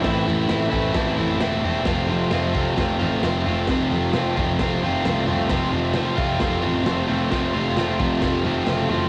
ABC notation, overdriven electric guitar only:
X:1
M:4/4
L:1/8
Q:1/4=132
K:Flyd
V:1 name="Overdriven electric guitar"
[A,,E,A,CE] [A,CE] [E,A,CE] [A,,E,A,CE] [E,A,CE] [A,,E,A,CE] [E,A,CE] [A,CE] | [F,,C,F,A,CF] [F,A,CF] [F,A,CF] [F,,C,F,A,CF] [F,A,CF] [F,,C,F,A,CF] [F,A,CF] [F,A,CF] | [F,,C,F,A,CF] [F,A,CF] [F,A,CF] [F,,C,F,A,CF] [F,A,CF] [F,,C,F,A,CF] [F,A,CF] [F,A,CF] | [F,,C,F,A,CF] [F,A,CF] [F,A,CF] [F,,C,F,A,CF] [F,A,CF] [F,,C,F,A,CF] [F,A,CF] [F,A,CF] |
[F,,C,F,A,CF] [F,A,CF] [F,A,CF] [F,,C,F,A,CF] [F,A,CF] [F,,C,F,A,CF] [F,A,CF] [F,A,CF] |]